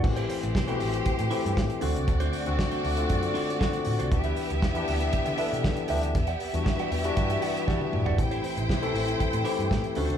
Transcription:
<<
  \new Staff \with { instrumentName = "Clean electric guitar" } { \time 4/4 \key a \dorian \tempo 4 = 118 r16 <e' g' c''>16 <e' g' c''>16 r8 <e' g' c''>8 r8. <e' g' c''>8 r8 <d' fis' c''>8 | r16 <d' fis' c''>16 <d' fis' c''>16 r8 <d' fis' c''>8 r8. <d' fis' c''>8 <d' fis' c''>8 r16 <d' fis' c''>16 | r16 <g' b' e''>16 <g' b' e''>16 r8 <g' b' e''>8 r8. <g' b' e''>8 r8 <g' b' e''>8 | r16 <g' d'' fis''>16 <g' d'' fis''>16 r8 <g' d'' fis''>8 r8. <g' d'' fis''>8 <g' d'' fis''>8 r16 <g' d'' fis''>16 |
r16 <e' g' c''>16 <e' g' c''>16 r8 <e' g' c''>8 r8. <e' g' c''>8 r8 <d' fis' c''>8 | }
  \new Staff \with { instrumentName = "String section" } { \time 4/4 \key a \dorian <a g' c''>2.~ <a g' c''>8 <a fis' d''>8~ | <a fis' d''>1 | <b g' e''>1 | <b g' e''>1 |
<e' c'' g''>2.~ <e' c'' g''>8 <d' c'' fis''>8 | }
  \new Staff \with { instrumentName = "Tine electric piano" } { \time 4/4 \key a \dorian <e a c' fis' g'>4 r16 <e a c' fis' g'>4 r16 <e a c' g'>8. r16 <d a c' fis'>8~ | <d a c' fis'>8 r16 <d a c' fis'>8. r16 <d a c' f' fis'>4 r16 <d a c' fis'>8. r16 | <e b d' fis' g'>4 r16 <e b d' g'>4 r16 <e b d' a'>8. r16 <e b d' g'>8 | r8. <e g d' fis'>8. r16 <e g d' fis'>4 r16 <e g d' fis'>8. r16 |
<e a c' g'>4 r16 <e a c' a'>4 r16 <e a c' g'>8. r16 <d a c' fis'>8 | }
  \new Staff \with { instrumentName = "Picked electric bass" } { \clef bass \time 4/4 \key a \dorian a,,8 r16 a,,16 b,,8 a,,8 r16 a,16 r16 g,16 a,16 r16 d,16 c,16 | d,8 r16 d,16 r8 d,8 fis,8 r8 d16 r16 a,16 c,16 | d,8 r16 d,16 e,8 d,8 r16 d16 r16 b,16 d16 r16 d,16 d,16 | e,8 r16 e,16 r8 e,8 g,8 r8 e16 r16 a,16 g,,16 |
a,,8 r16 a,,16 b,,8 a,,8 r16 a,16 r16 g,16 a,16 r16 d,16 c,16 | }
  \new DrumStaff \with { instrumentName = "Drums" } \drummode { \time 4/4 <cymc bd>16 hh16 hho16 hh16 <bd sn>16 hh16 hho16 hh16 <hh bd>16 hh16 hho16 hh16 <bd sn>16 hh16 hho16 hh16 | <hh bd>16 hh16 hho16 hh16 <bd sn>16 hh16 hho16 hh16 <hh bd>16 hh16 hho16 hh16 <bd sn>16 hh16 hho16 hh16 | <hh bd>16 hh16 hho16 hh16 <bd sn>16 hh16 hho16 hh16 <hh bd>16 hh16 hho16 hh16 <bd sn>16 hh16 hho16 hh16 | <hh bd>16 hh16 hho16 hh16 <bd sn>16 hh16 hho16 hh16 <hh bd>16 hh16 hho16 hh16 <bd sn>16 tommh16 toml16 tomfh16 |
<hh bd>16 hh16 hho16 hh16 <bd sn>16 hh16 hho16 hh16 <hh bd>16 hh16 hho16 hh16 <bd sn>16 hh16 hho16 hh16 | }
>>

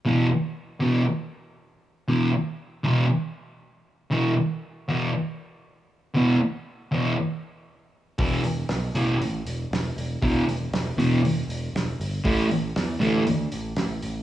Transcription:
<<
  \new Staff \with { instrumentName = "Distorted electric guitar" } { \clef bass \time 4/4 \key a \dorian \tempo 4 = 118 <e, b, e>8 r4 <e, b, e>8 r2 | <e, b, e>8 r4 <e, b, e>8 r2 | <e, b, e>8 r4 <e, b, e>8 r2 | <e, b, e>8 r4 <e, b, e>8 r2 |
<e, b, e>8 r4 <e, b, e>8 r2 | <e, b, e>8 r4 <e, b, e>8 r2 | <a, e a>8 r4 <a, e a>8 r2 | }
  \new Staff \with { instrumentName = "Picked electric bass" } { \clef bass \time 4/4 \key a \dorian r1 | r1 | r1 | r1 |
e,,8 e,,8 b,,8 a,,8 a,,8 e,,8 e,,8 e,,8 | e,,8 e,,8 e,,8 e,,8 e,,8 e,,8 e,,8 g,,8 | a,,8 a,,8 e,8 d,8 d,8 a,,8 a,,8 a,,8 | }
  \new DrumStaff \with { instrumentName = "Drums" } \drummode { \time 4/4 r4 r4 r4 r4 | r4 r4 r4 r4 | r4 r4 r4 r4 | r4 r4 r4 r4 |
<hho bd>8 hho8 <hho sn>8 hho8 hho8 hho8 <hho sn>8 hho8 | <hho bd>8 hho8 <hho sn>8 hho8 hho8 hho8 <hho sn>8 hho8 | <hho bd>8 hho8 <hho sn>8 hho8 hho8 hho8 <hho sn>8 hho8 | }
>>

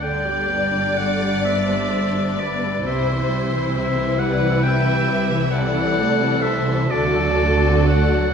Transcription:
<<
  \new Staff \with { instrumentName = "Oboe" } { \time 6/8 \key g \major \tempo 4. = 43 g''4 fis''8 e''4 d''8 | e''4 e''8 fis''8 g''8 r8 | fis''4 e''8 d''4 fis''8 | }
  \new Staff \with { instrumentName = "Violin section" } { \time 6/8 \key g \major d''4 d''8 c''4 b'8 | c''4 c''8 d''8 e''4 | d''4 c''8 a'4 d''8 | }
  \new Staff \with { instrumentName = "Violin section" } { \time 6/8 \key g \major d''2. | c''4. b'4. | a'4. a'4. | }
  \new Staff \with { instrumentName = "Viola section" } { \clef bass \time 6/8 \key g \major << { d'2. | e'2.~ | e'4. fis'4. | } \\ { d16 g16 b16 g16 d16 g16 b16 g16 d16 g16 b16 g16 | c16 e16 g16 e16 c16 e16 g16 e16 c16 e16 g16 e16 | c16 e16 a16 e16 c16 e16 d16 fis16 a16 c'16 a16 fis16 | } >> }
  \new Staff \with { instrumentName = "Cello section" } { \clef bass \time 6/8 \key g \major g,2. | c2.~ | c4. d4. | }
  \new Staff \with { instrumentName = "Double bass section" } { \clef bass \time 6/8 \key g \major g,,2. | c,2.~ | c,4. d,4. | }
>>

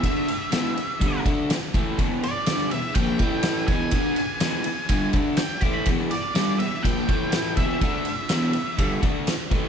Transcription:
<<
  \new Staff \with { instrumentName = "Lead electric guitar" } { \time 4/4 \key a \major \tempo 4 = 123 e''2~ e''8 r4. | r8 d''4 e''8 g''4. gis''8~ | gis''2~ gis''8 r8 g''8 d'''16 b''16 | r8 d''4 e''8 g''4. e''8~ |
e''2~ e''8 r4. | }
  \new Staff \with { instrumentName = "Overdriven electric guitar" } { \clef bass \time 4/4 \key a \major <d a d'>8 r8 <e, b, e>8 r8 <g, d g>8 <d a d'>8 r8 <a, e a>8 | <e, b, e>8 r8 <g, d g>8 <e, b,>8 <ais, f ais>8 <a, e a>4 <e, b, e>8 | <d a d'>8 r8 <e, b, e>8 r8 <g, d g>8 <d a d'>8 r8 <a, e a>8 | <e, b, e>8 r8 <g, d g>8 <e, b,>8 <ais, f ais>8 <a, e a>4 <e, b, e>8 |
<d a d'>8 r8 <e, b, e>8 r8 <g, d g>8 <d a d'>8 r8 <a, e a>8 | }
  \new DrumStaff \with { instrumentName = "Drums" } \drummode { \time 4/4 <bd cymr>8 cymr8 <cymr sn>8 cymr8 <bd cymr>8 <bd cymr>8 <cymr sn>8 <bd cymr>8 | <bd cymr>8 cymr8 <cymr sn>8 cymr8 <bd cymr>8 <bd cymr>8 <cymr sn>8 <bd cymr>8 | <bd cymr>8 cymr8 <cymr sn>8 cymr8 <bd cymr>8 <bd cymr>8 <cymr sn>8 <bd cymr>8 | <bd cymr>8 cymr8 <cymr sn>8 cymr8 <bd cymr>8 <bd cymr>8 <cymr sn>8 <bd cymr>8 |
<bd cymr>8 cymr8 <cymr sn>8 cymr8 <bd cymr>8 <bd cymr>8 <cymr sn>8 <bd cymr>8 | }
>>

